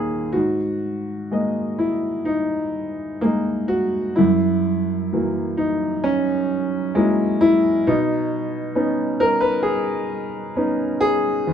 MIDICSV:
0, 0, Header, 1, 2, 480
1, 0, Start_track
1, 0, Key_signature, 5, "minor"
1, 0, Tempo, 974026
1, 171, Time_signature, 4, 2, 24, 8
1, 1126, Tempo, 947867
1, 2566, Tempo, 914634
1, 4006, Tempo, 899550
1, 5959, End_track
2, 0, Start_track
2, 0, Title_t, "Grand piano"
2, 0, Program_c, 0, 0
2, 0, Control_c, 0, 64, 127
2, 0, Note_on_c, 0, 39, 59
2, 0, Note_on_c, 0, 46, 45
2, 0, Note_on_c, 0, 51, 46
2, 0, Note_on_c, 0, 58, 44
2, 0, Note_on_c, 0, 68, 74
2, 0, Note_on_c, 0, 73, 56
2, 151, Note_off_c, 0, 39, 0
2, 153, Note_off_c, 0, 46, 0
2, 155, Note_off_c, 0, 51, 0
2, 160, Note_on_c, 0, 66, 70
2, 166, Note_off_c, 0, 58, 0
2, 174, Note_off_c, 0, 68, 0
2, 175, Note_on_c, 0, 44, 50
2, 178, Note_off_c, 0, 73, 0
2, 178, Control_c, 0, 64, 0
2, 275, Control_c, 0, 64, 127
2, 627, Note_off_c, 0, 66, 0
2, 648, Note_on_c, 0, 56, 41
2, 650, Note_on_c, 0, 58, 35
2, 654, Note_on_c, 0, 75, 43
2, 880, Note_on_c, 0, 64, 64
2, 1110, Note_off_c, 0, 56, 0
2, 1110, Note_on_c, 0, 63, 71
2, 1111, Note_off_c, 0, 58, 0
2, 1113, Note_off_c, 0, 75, 0
2, 1129, Note_off_c, 0, 64, 0
2, 1596, Note_on_c, 0, 58, 74
2, 1604, Note_off_c, 0, 58, 0
2, 1604, Note_off_c, 0, 63, 0
2, 1606, Note_on_c, 0, 56, 39
2, 1611, Note_on_c, 0, 58, 38
2, 1612, Note_on_c, 0, 63, 44
2, 1833, Note_on_c, 0, 66, 83
2, 2073, Note_off_c, 0, 44, 0
2, 2074, Note_on_c, 0, 64, 78
2, 2075, Note_off_c, 0, 56, 0
2, 2077, Note_off_c, 0, 58, 0
2, 2077, Note_off_c, 0, 63, 0
2, 2089, Note_off_c, 0, 66, 0
2, 2089, Note_on_c, 0, 42, 61
2, 2097, Control_c, 0, 64, 0
2, 2170, Control_c, 0, 64, 127
2, 2537, Note_off_c, 0, 64, 0
2, 2564, Note_on_c, 0, 54, 45
2, 2568, Note_on_c, 0, 58, 38
2, 2571, Note_on_c, 0, 52, 50
2, 2800, Note_on_c, 0, 63, 75
2, 3032, Note_off_c, 0, 54, 0
2, 3033, Note_off_c, 0, 58, 0
2, 3035, Note_off_c, 0, 52, 0
2, 3042, Note_on_c, 0, 61, 80
2, 3050, Note_off_c, 0, 63, 0
2, 3522, Note_on_c, 0, 56, 76
2, 3526, Note_on_c, 0, 58, 40
2, 3527, Note_on_c, 0, 64, 51
2, 3528, Note_on_c, 0, 54, 44
2, 3541, Note_off_c, 0, 61, 0
2, 3755, Note_off_c, 0, 64, 0
2, 3763, Note_on_c, 0, 64, 98
2, 3774, Note_off_c, 0, 56, 0
2, 3983, Note_off_c, 0, 42, 0
2, 3990, Note_off_c, 0, 58, 0
2, 3991, Note_off_c, 0, 54, 0
2, 4005, Note_on_c, 0, 47, 68
2, 4005, Note_on_c, 0, 63, 84
2, 4009, Note_off_c, 0, 64, 0
2, 4013, Control_c, 0, 64, 0
2, 4120, Control_c, 0, 64, 127
2, 4462, Note_off_c, 0, 63, 0
2, 4475, Note_on_c, 0, 59, 50
2, 4478, Note_on_c, 0, 61, 46
2, 4480, Note_on_c, 0, 63, 61
2, 4715, Note_on_c, 0, 70, 95
2, 4824, Note_on_c, 0, 71, 90
2, 4843, Note_off_c, 0, 70, 0
2, 4942, Note_on_c, 0, 68, 80
2, 4945, Note_off_c, 0, 59, 0
2, 4945, Note_off_c, 0, 71, 0
2, 4946, Note_off_c, 0, 61, 0
2, 4947, Note_off_c, 0, 63, 0
2, 5410, Note_off_c, 0, 68, 0
2, 5441, Note_on_c, 0, 59, 49
2, 5442, Note_on_c, 0, 61, 42
2, 5448, Note_on_c, 0, 63, 52
2, 5678, Note_on_c, 0, 68, 106
2, 5904, Note_off_c, 0, 47, 0
2, 5911, Note_off_c, 0, 59, 0
2, 5911, Note_off_c, 0, 61, 0
2, 5914, Note_off_c, 0, 63, 0
2, 5927, Note_on_c, 0, 40, 60
2, 5933, Control_c, 0, 64, 0
2, 5959, Note_off_c, 0, 40, 0
2, 5959, Note_off_c, 0, 68, 0
2, 5959, End_track
0, 0, End_of_file